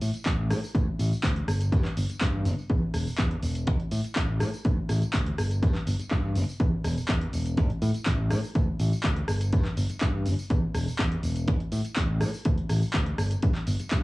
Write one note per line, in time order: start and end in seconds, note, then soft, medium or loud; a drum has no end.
0.01 0.10 A2 loud
0.01 open hi-hat loud
0.01 tambourine medium
0.14 muted fingered electric bass stroke soft
0.14 closed hi-hat soft
0.14 tambourine soft
0.26 0.52 A1 loud
0.26 kick loud
0.26 clap loud
0.26 closed hi-hat medium
0.50 0.58 A2 medium
0.50 cross-stick medium
0.50 open hi-hat medium
0.50 tambourine medium
0.64 tambourine soft
0.75 0.87 D2 loud
0.75 kick loud
0.75 closed hi-hat medium
0.75 tambourine soft
0.87 muted fingered electric bass stroke soft
0.99 1.11 A1 medium
0.99 open hi-hat loud
0.99 tambourine medium
1.12 muted fingered electric bass stroke soft
1.12 tambourine soft
1.23 1.39 D2 medium
1.23 kick loud
1.23 clap loud
1.23 closed hi-hat medium
1.36 closed hi-hat medium
1.48 1.74 G1 medium
1.48 cross-stick medium
1.48 open hi-hat loud
1.48 tambourine medium
1.61 closed hi-hat medium
1.61 tambourine soft
1.72 1.84 G2 loud
1.72 kick loud
1.72 closed hi-hat medium
1.72 tambourine soft
1.85 muted fingered electric bass stroke soft
1.85 clap soft
1.85 closed hi-hat soft
1.97 2.05 G1 loud
1.97 open hi-hat loud
1.97 tambourine medium
2.09 muted fingered electric bass stroke soft
2.09 closed hi-hat soft
2.09 tambourine soft
2.21 2.47 G2 loud
2.21 kick loud
2.21 clap loud
2.21 closed hi-hat medium
2.45 2.53 G1 medium
2.45 open hi-hat loud
2.45 tambourine medium
2.59 tambourine soft
2.70 2.82 E2 loud
2.70 kick loud
2.70 closed hi-hat medium
2.70 tambourine soft
2.82 muted fingered electric bass stroke soft
2.94 3.06 E1 medium
2.94 cross-stick medium
2.94 open hi-hat loud
2.94 tambourine medium
3.07 muted fingered electric bass stroke soft
3.07 tambourine soft
3.18 3.34 E2 medium
3.18 kick loud
3.18 clap loud
3.18 closed hi-hat medium
3.31 closed hi-hat soft
3.43 3.67 E1 medium
3.43 open hi-hat loud
3.43 tambourine medium
3.55 closed hi-hat medium
3.55 tambourine soft
3.67 3.79 A1 loud
3.67 kick loud
3.67 closed hi-hat medium
3.67 tambourine soft
3.80 muted fingered electric bass stroke soft
3.80 closed hi-hat soft
3.91 4.00 A2 loud
3.91 open hi-hat loud
3.91 tambourine medium
4.04 closed hi-hat soft
4.04 tambourine soft
4.16 4.42 A1 loud
4.16 kick loud
4.16 clap loud
4.16 closed hi-hat medium
4.40 4.49 A2 medium
4.40 cross-stick medium
4.40 open hi-hat loud
4.40 tambourine medium
4.54 tambourine soft
4.65 4.77 D2 loud
4.65 kick loud
4.65 closed hi-hat medium
4.65 tambourine soft
4.78 muted fingered electric bass stroke soft
4.89 5.02 A1 medium
4.89 cross-stick medium
4.89 open hi-hat loud
4.89 tambourine medium
5.02 muted fingered electric bass stroke soft
5.02 closed hi-hat soft
5.02 tambourine soft
5.13 5.30 D2 medium
5.13 kick loud
5.13 clap loud
5.13 closed hi-hat medium
5.13 tambourine soft
5.27 closed hi-hat soft
5.38 5.64 G1 medium
5.38 cross-stick medium
5.38 open hi-hat medium
5.38 tambourine medium
5.51 closed hi-hat medium
5.51 tambourine soft
5.63 5.75 G2 loud
5.63 kick loud
5.63 closed hi-hat medium
5.63 tambourine soft
5.75 muted fingered electric bass stroke soft
5.75 clap soft
5.75 closed hi-hat soft
5.87 5.95 G1 loud
5.87 open hi-hat loud
5.87 tambourine medium
6.00 muted fingered electric bass stroke soft
6.00 closed hi-hat soft
6.00 tambourine soft
6.11 6.37 G2 loud
6.11 kick loud
6.11 clap loud
6.11 closed hi-hat medium
6.36 6.44 G1 medium
6.36 open hi-hat loud
6.36 tambourine medium
6.49 tambourine soft
6.60 6.72 E2 loud
6.60 kick loud
6.60 closed hi-hat medium
6.73 muted fingered electric bass stroke soft
6.84 6.97 E1 loud
6.84 cross-stick medium
6.84 open hi-hat loud
6.84 tambourine medium
6.97 muted fingered electric bass stroke soft
6.97 tambourine soft
7.08 7.25 E2 medium
7.08 kick loud
7.08 clap loud
7.08 closed hi-hat medium
7.21 closed hi-hat soft
7.33 7.58 E1 medium
7.33 open hi-hat medium
7.33 tambourine medium
7.46 closed hi-hat medium
7.46 tambourine soft
7.57 7.70 A1 loud
7.57 kick loud
7.57 closed hi-hat medium
7.57 tambourine soft
7.70 muted fingered electric bass stroke soft
7.70 closed hi-hat soft
7.82 7.90 A2 loud
7.82 open hi-hat loud
7.82 tambourine medium
7.94 muted fingered electric bass stroke soft
7.94 closed hi-hat soft
7.94 tambourine soft
8.06 8.32 A1 loud
8.06 kick loud
8.06 clap loud
8.06 closed hi-hat medium
8.31 8.39 A2 medium
8.31 cross-stick medium
8.31 open hi-hat medium
8.31 tambourine medium
8.44 tambourine soft
8.55 8.67 D2 loud
8.55 kick loud
8.55 closed hi-hat medium
8.55 tambourine soft
8.68 muted fingered electric bass stroke soft
8.80 8.91 A1 loud
8.80 open hi-hat loud
8.80 tambourine medium
8.92 muted fingered electric bass stroke soft
8.92 tambourine soft
9.03 9.20 D2 medium
9.03 kick loud
9.03 clap loud
9.03 closed hi-hat medium
9.16 closed hi-hat medium
9.28 9.54 G1 medium
9.28 cross-stick medium
9.28 open hi-hat medium
9.28 tambourine medium
9.41 closed hi-hat medium
9.41 tambourine soft
9.53 9.65 G2 loud
9.53 kick loud
9.53 closed hi-hat medium
9.53 tambourine soft
9.65 muted fingered electric bass stroke soft
9.65 clap soft
9.65 closed hi-hat soft
9.77 9.85 G1 loud
9.77 open hi-hat loud
9.77 tambourine medium
9.90 muted fingered electric bass stroke soft
9.90 closed hi-hat soft
9.90 tambourine soft
10.01 10.27 G2 loud
10.01 kick loud
10.01 clap loud
10.01 closed hi-hat medium
10.26 10.34 G1 medium
10.26 open hi-hat medium
10.26 tambourine medium
10.39 tambourine soft
10.50 10.62 E2 loud
10.50 kick loud
10.50 closed hi-hat medium
10.50 tambourine soft
10.63 muted fingered electric bass stroke soft
10.74 10.86 E1 medium
10.74 cross-stick medium
10.74 open hi-hat loud
10.74 tambourine medium
10.87 muted fingered electric bass stroke soft
10.87 tambourine soft
10.99 11.15 E2 medium
10.99 kick loud
10.99 clap loud
10.99 closed hi-hat medium
11.12 closed hi-hat medium
11.23 11.48 E1 medium
11.23 open hi-hat medium
11.23 tambourine medium
11.36 closed hi-hat medium
11.36 tambourine soft
11.48 11.60 A1 loud
11.48 kick loud
11.48 closed hi-hat medium
11.48 tambourine soft
11.60 muted fingered electric bass stroke soft
11.60 closed hi-hat soft
11.72 11.80 A2 loud
11.72 open hi-hat loud
11.72 tambourine medium
11.85 closed hi-hat soft
11.85 tambourine soft
11.96 12.23 A1 loud
11.96 kick loud
11.96 clap loud
11.96 closed hi-hat medium
11.96 tambourine soft
12.21 12.29 A2 medium
12.21 cross-stick medium
12.21 open hi-hat medium
12.21 tambourine medium
12.34 tambourine soft
12.45 12.57 D2 loud
12.45 kick loud
12.45 closed hi-hat medium
12.45 tambourine soft
12.58 muted fingered electric bass stroke soft
12.58 closed hi-hat soft
12.69 12.82 A1 medium
12.69 cross-stick medium
12.69 open hi-hat loud
12.69 tambourine medium
12.82 muted fingered electric bass stroke soft
12.82 tambourine soft
12.93 13.10 D2 medium
12.93 kick loud
12.93 clap loud
12.93 closed hi-hat medium
12.93 tambourine soft
13.06 closed hi-hat medium
13.18 13.34 G1 medium
13.18 cross-stick medium
13.18 open hi-hat medium
13.18 tambourine medium
13.31 closed hi-hat medium
13.31 tambourine soft
13.42 13.51 G2 medium
13.42 kick loud
13.42 closed hi-hat medium
13.42 tambourine soft
13.55 clap soft
13.55 closed hi-hat soft
13.67 13.75 G1 medium
13.67 open hi-hat loud
13.67 tambourine medium
13.80 muted fingered electric bass stroke soft
13.80 closed hi-hat soft
13.80 tambourine soft
13.91 14.03 G2 loud
13.91 kick loud
13.91 clap loud
13.91 closed hi-hat medium
13.91 tambourine soft